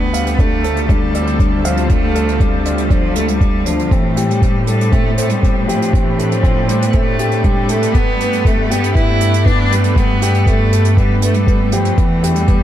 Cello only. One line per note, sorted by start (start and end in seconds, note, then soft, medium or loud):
0.00 0.40 B3 medium
0.39 0.91 A3 medium
0.89 1.65 G3 medium
1.66 1.92 F3 medium
1.91 2.42 A3 medium
2.41 2.92 G3 medium
2.91 3.18 F3 medium
3.17 3.30 A3 medium
3.28 3.67 G3 medium
3.66 3.92 F3 medium
3.91 4.31 E3 medium
4.29 4.67 G3 medium
4.67 4.94 G3 medium
4.92 5.18 A3 medium
5.18 5.31 A3 medium
5.30 5.70 G3 medium
5.68 5.96 F3 medium
5.94 6.33 E3 medium
6.31 6.71 F3 medium
6.69 6.87 G3 medium
6.88 6.96 B3 medium
6.94 7.46 A3 medium
7.44 7.71 G3 medium
7.70 7.96 A3 medium
7.94 8.47 B3 loud
8.45 8.72 A3 medium
8.71 8.95 B3 medium
8.95 9.48 E4 loud
9.46 9.74 D4 loud
9.73 9.99 G3 medium
9.98 10.49 B3 medium
10.48 10.97 A3 medium
10.98 11.21 G3 medium
11.23 11.36 A3 medium
11.34 11.75 G3 medium
11.73 12.00 F3 medium
11.98 12.36 E3 medium
12.35 12.63 G3 medium